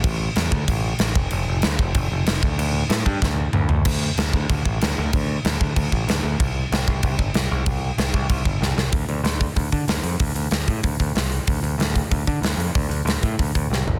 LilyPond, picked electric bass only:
\new Staff \with { instrumentName = "Picked electric bass" } { \clef bass \time 4/4 \key d \minor \tempo 4 = 189 a,,4 e,8 d,8 a,,4 a,,8 f,,8 | f,,8 f,,8 d,8 f,,8 f,,8 f,,8 f,,8 d,8 | d,4 a,8 g,8 d,4 d,8 d,8 | d,4 d,8 d,8 d,8 a,,8 d,8 d,8 |
d,4 d,8 d,8 d,8 a,,8 d,8 d,8 | c,4 c,8 c,8 c,8 g,,8 c,8 c,8 | c,4 c,8 c,8 c,8 g,,8 c,8 c,8 | d,8 d,8 d,4 d,8 d8 d,8 f,8 |
d,8 d,8 d,8 a,8 d,8 d,8 c,4 | d,8 d,8 d,4 d,8 d8 d,8 f,8 | d,8 d,8 d,8 a,8 d,8 d,8 c,8 g,,8 | }